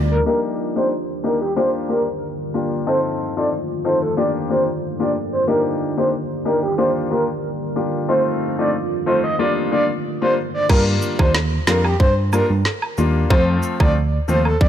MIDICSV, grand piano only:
0, 0, Header, 1, 2, 480
1, 0, Start_track
1, 0, Key_signature, -2, "minor"
1, 0, Tempo, 652174
1, 192, Time_signature, 4, 2, 24, 8
1, 10809, End_track
2, 0, Start_track
2, 0, Title_t, "Grand piano"
2, 0, Program_c, 0, 0
2, 190, Note_on_c, 0, 58, 86
2, 192, Note_on_c, 0, 62, 76
2, 193, Note_on_c, 0, 63, 76
2, 194, Note_on_c, 0, 67, 90
2, 528, Note_off_c, 0, 58, 0
2, 529, Note_off_c, 0, 62, 0
2, 529, Note_off_c, 0, 63, 0
2, 530, Note_off_c, 0, 67, 0
2, 557, Note_on_c, 0, 58, 71
2, 559, Note_on_c, 0, 62, 61
2, 560, Note_on_c, 0, 63, 63
2, 562, Note_on_c, 0, 67, 79
2, 663, Note_off_c, 0, 58, 0
2, 664, Note_off_c, 0, 62, 0
2, 664, Note_off_c, 0, 63, 0
2, 665, Note_off_c, 0, 67, 0
2, 909, Note_on_c, 0, 58, 69
2, 911, Note_on_c, 0, 62, 66
2, 913, Note_on_c, 0, 63, 63
2, 914, Note_on_c, 0, 67, 79
2, 1028, Note_off_c, 0, 58, 0
2, 1029, Note_off_c, 0, 62, 0
2, 1030, Note_off_c, 0, 63, 0
2, 1031, Note_off_c, 0, 67, 0
2, 1150, Note_on_c, 0, 58, 88
2, 1152, Note_on_c, 0, 62, 84
2, 1153, Note_on_c, 0, 65, 81
2, 1154, Note_on_c, 0, 67, 100
2, 1373, Note_off_c, 0, 58, 0
2, 1374, Note_off_c, 0, 62, 0
2, 1375, Note_off_c, 0, 65, 0
2, 1375, Note_off_c, 0, 67, 0
2, 1389, Note_on_c, 0, 58, 71
2, 1391, Note_on_c, 0, 62, 65
2, 1392, Note_on_c, 0, 65, 66
2, 1394, Note_on_c, 0, 67, 75
2, 1509, Note_off_c, 0, 58, 0
2, 1509, Note_off_c, 0, 62, 0
2, 1510, Note_off_c, 0, 65, 0
2, 1511, Note_off_c, 0, 67, 0
2, 1869, Note_on_c, 0, 58, 67
2, 1871, Note_on_c, 0, 62, 66
2, 1872, Note_on_c, 0, 65, 62
2, 1874, Note_on_c, 0, 67, 78
2, 2093, Note_off_c, 0, 58, 0
2, 2094, Note_off_c, 0, 62, 0
2, 2094, Note_off_c, 0, 65, 0
2, 2095, Note_off_c, 0, 67, 0
2, 2109, Note_on_c, 0, 60, 87
2, 2110, Note_on_c, 0, 63, 81
2, 2112, Note_on_c, 0, 65, 79
2, 2114, Note_on_c, 0, 69, 93
2, 2447, Note_off_c, 0, 60, 0
2, 2448, Note_off_c, 0, 63, 0
2, 2449, Note_off_c, 0, 65, 0
2, 2450, Note_off_c, 0, 69, 0
2, 2478, Note_on_c, 0, 60, 74
2, 2478, Note_on_c, 0, 63, 63
2, 2480, Note_on_c, 0, 65, 68
2, 2482, Note_on_c, 0, 69, 77
2, 2583, Note_off_c, 0, 60, 0
2, 2583, Note_off_c, 0, 63, 0
2, 2584, Note_off_c, 0, 65, 0
2, 2585, Note_off_c, 0, 69, 0
2, 2830, Note_on_c, 0, 60, 75
2, 2831, Note_on_c, 0, 63, 66
2, 2832, Note_on_c, 0, 65, 66
2, 2834, Note_on_c, 0, 69, 76
2, 2949, Note_off_c, 0, 60, 0
2, 2949, Note_off_c, 0, 63, 0
2, 2950, Note_off_c, 0, 65, 0
2, 2951, Note_off_c, 0, 69, 0
2, 3069, Note_on_c, 0, 58, 88
2, 3071, Note_on_c, 0, 62, 83
2, 3072, Note_on_c, 0, 65, 81
2, 3073, Note_on_c, 0, 67, 104
2, 3292, Note_off_c, 0, 58, 0
2, 3293, Note_off_c, 0, 62, 0
2, 3294, Note_off_c, 0, 65, 0
2, 3295, Note_off_c, 0, 67, 0
2, 3309, Note_on_c, 0, 58, 74
2, 3310, Note_on_c, 0, 62, 67
2, 3312, Note_on_c, 0, 65, 65
2, 3313, Note_on_c, 0, 67, 81
2, 3428, Note_off_c, 0, 58, 0
2, 3429, Note_off_c, 0, 62, 0
2, 3430, Note_off_c, 0, 65, 0
2, 3430, Note_off_c, 0, 67, 0
2, 3677, Note_on_c, 0, 58, 70
2, 3679, Note_on_c, 0, 62, 67
2, 3680, Note_on_c, 0, 65, 66
2, 3682, Note_on_c, 0, 67, 82
2, 3783, Note_off_c, 0, 58, 0
2, 3783, Note_off_c, 0, 62, 0
2, 3784, Note_off_c, 0, 65, 0
2, 3785, Note_off_c, 0, 67, 0
2, 4029, Note_on_c, 0, 58, 86
2, 4031, Note_on_c, 0, 62, 79
2, 4032, Note_on_c, 0, 63, 82
2, 4033, Note_on_c, 0, 67, 99
2, 4367, Note_off_c, 0, 58, 0
2, 4368, Note_off_c, 0, 62, 0
2, 4369, Note_off_c, 0, 63, 0
2, 4369, Note_off_c, 0, 67, 0
2, 4396, Note_on_c, 0, 58, 73
2, 4397, Note_on_c, 0, 62, 66
2, 4399, Note_on_c, 0, 63, 63
2, 4400, Note_on_c, 0, 67, 77
2, 4502, Note_off_c, 0, 58, 0
2, 4503, Note_off_c, 0, 62, 0
2, 4504, Note_off_c, 0, 63, 0
2, 4504, Note_off_c, 0, 67, 0
2, 4749, Note_on_c, 0, 58, 74
2, 4750, Note_on_c, 0, 62, 65
2, 4752, Note_on_c, 0, 63, 66
2, 4753, Note_on_c, 0, 67, 81
2, 4868, Note_off_c, 0, 58, 0
2, 4869, Note_off_c, 0, 62, 0
2, 4870, Note_off_c, 0, 63, 0
2, 4870, Note_off_c, 0, 67, 0
2, 4990, Note_on_c, 0, 58, 92
2, 4991, Note_on_c, 0, 62, 85
2, 4992, Note_on_c, 0, 65, 84
2, 4994, Note_on_c, 0, 67, 97
2, 5213, Note_off_c, 0, 58, 0
2, 5214, Note_off_c, 0, 62, 0
2, 5214, Note_off_c, 0, 65, 0
2, 5215, Note_off_c, 0, 67, 0
2, 5230, Note_on_c, 0, 58, 72
2, 5231, Note_on_c, 0, 62, 67
2, 5233, Note_on_c, 0, 65, 65
2, 5235, Note_on_c, 0, 67, 83
2, 5349, Note_off_c, 0, 58, 0
2, 5349, Note_off_c, 0, 62, 0
2, 5350, Note_off_c, 0, 65, 0
2, 5351, Note_off_c, 0, 67, 0
2, 5709, Note_on_c, 0, 58, 68
2, 5711, Note_on_c, 0, 62, 66
2, 5712, Note_on_c, 0, 65, 63
2, 5714, Note_on_c, 0, 67, 79
2, 5932, Note_off_c, 0, 58, 0
2, 5933, Note_off_c, 0, 62, 0
2, 5934, Note_off_c, 0, 65, 0
2, 5935, Note_off_c, 0, 67, 0
2, 5949, Note_on_c, 0, 57, 84
2, 5951, Note_on_c, 0, 60, 83
2, 5953, Note_on_c, 0, 63, 79
2, 5954, Note_on_c, 0, 65, 99
2, 6287, Note_off_c, 0, 57, 0
2, 6288, Note_off_c, 0, 60, 0
2, 6289, Note_off_c, 0, 63, 0
2, 6289, Note_off_c, 0, 65, 0
2, 6317, Note_on_c, 0, 57, 71
2, 6319, Note_on_c, 0, 60, 63
2, 6321, Note_on_c, 0, 63, 68
2, 6322, Note_on_c, 0, 65, 79
2, 6423, Note_off_c, 0, 57, 0
2, 6423, Note_off_c, 0, 60, 0
2, 6424, Note_off_c, 0, 63, 0
2, 6425, Note_off_c, 0, 65, 0
2, 6670, Note_on_c, 0, 57, 74
2, 6671, Note_on_c, 0, 60, 66
2, 6673, Note_on_c, 0, 63, 69
2, 6675, Note_on_c, 0, 65, 82
2, 6789, Note_off_c, 0, 57, 0
2, 6790, Note_off_c, 0, 60, 0
2, 6790, Note_off_c, 0, 63, 0
2, 6791, Note_off_c, 0, 65, 0
2, 6910, Note_on_c, 0, 55, 91
2, 6911, Note_on_c, 0, 58, 82
2, 6913, Note_on_c, 0, 62, 85
2, 6915, Note_on_c, 0, 65, 97
2, 7133, Note_off_c, 0, 55, 0
2, 7134, Note_off_c, 0, 58, 0
2, 7134, Note_off_c, 0, 62, 0
2, 7135, Note_off_c, 0, 65, 0
2, 7151, Note_on_c, 0, 55, 74
2, 7152, Note_on_c, 0, 58, 68
2, 7154, Note_on_c, 0, 62, 66
2, 7155, Note_on_c, 0, 65, 84
2, 7269, Note_off_c, 0, 55, 0
2, 7270, Note_off_c, 0, 58, 0
2, 7271, Note_off_c, 0, 62, 0
2, 7271, Note_off_c, 0, 65, 0
2, 7517, Note_on_c, 0, 55, 75
2, 7519, Note_on_c, 0, 58, 66
2, 7520, Note_on_c, 0, 62, 67
2, 7521, Note_on_c, 0, 65, 82
2, 7623, Note_off_c, 0, 55, 0
2, 7623, Note_off_c, 0, 58, 0
2, 7624, Note_off_c, 0, 62, 0
2, 7625, Note_off_c, 0, 65, 0
2, 7870, Note_on_c, 0, 55, 92
2, 7872, Note_on_c, 0, 58, 80
2, 7873, Note_on_c, 0, 62, 82
2, 7875, Note_on_c, 0, 65, 102
2, 8208, Note_off_c, 0, 55, 0
2, 8209, Note_off_c, 0, 58, 0
2, 8209, Note_off_c, 0, 62, 0
2, 8210, Note_off_c, 0, 65, 0
2, 8237, Note_on_c, 0, 55, 73
2, 8239, Note_on_c, 0, 58, 67
2, 8240, Note_on_c, 0, 62, 67
2, 8241, Note_on_c, 0, 65, 85
2, 8342, Note_off_c, 0, 55, 0
2, 8344, Note_off_c, 0, 58, 0
2, 8344, Note_off_c, 0, 62, 0
2, 8345, Note_off_c, 0, 65, 0
2, 8590, Note_on_c, 0, 55, 73
2, 8592, Note_on_c, 0, 58, 69
2, 8593, Note_on_c, 0, 62, 67
2, 8595, Note_on_c, 0, 65, 81
2, 8709, Note_off_c, 0, 55, 0
2, 8710, Note_off_c, 0, 58, 0
2, 8710, Note_off_c, 0, 62, 0
2, 8711, Note_off_c, 0, 65, 0
2, 9070, Note_on_c, 0, 55, 71
2, 9071, Note_on_c, 0, 58, 66
2, 9073, Note_on_c, 0, 62, 69
2, 9074, Note_on_c, 0, 65, 81
2, 9189, Note_off_c, 0, 55, 0
2, 9189, Note_off_c, 0, 58, 0
2, 9190, Note_off_c, 0, 62, 0
2, 9191, Note_off_c, 0, 65, 0
2, 9550, Note_on_c, 0, 55, 77
2, 9552, Note_on_c, 0, 58, 69
2, 9553, Note_on_c, 0, 62, 69
2, 9555, Note_on_c, 0, 65, 82
2, 9773, Note_off_c, 0, 55, 0
2, 9774, Note_off_c, 0, 58, 0
2, 9774, Note_off_c, 0, 62, 0
2, 9775, Note_off_c, 0, 65, 0
2, 9789, Note_on_c, 0, 53, 93
2, 9790, Note_on_c, 0, 57, 83
2, 9792, Note_on_c, 0, 60, 87
2, 9793, Note_on_c, 0, 65, 103
2, 10127, Note_off_c, 0, 53, 0
2, 10128, Note_off_c, 0, 57, 0
2, 10129, Note_off_c, 0, 60, 0
2, 10129, Note_off_c, 0, 65, 0
2, 10156, Note_on_c, 0, 53, 75
2, 10158, Note_on_c, 0, 57, 68
2, 10160, Note_on_c, 0, 60, 68
2, 10161, Note_on_c, 0, 65, 83
2, 10262, Note_off_c, 0, 53, 0
2, 10263, Note_off_c, 0, 57, 0
2, 10264, Note_off_c, 0, 60, 0
2, 10265, Note_off_c, 0, 65, 0
2, 10509, Note_on_c, 0, 53, 73
2, 10511, Note_on_c, 0, 57, 70
2, 10513, Note_on_c, 0, 60, 70
2, 10514, Note_on_c, 0, 65, 84
2, 10628, Note_off_c, 0, 53, 0
2, 10629, Note_off_c, 0, 57, 0
2, 10630, Note_off_c, 0, 60, 0
2, 10631, Note_off_c, 0, 65, 0
2, 10809, End_track
0, 0, End_of_file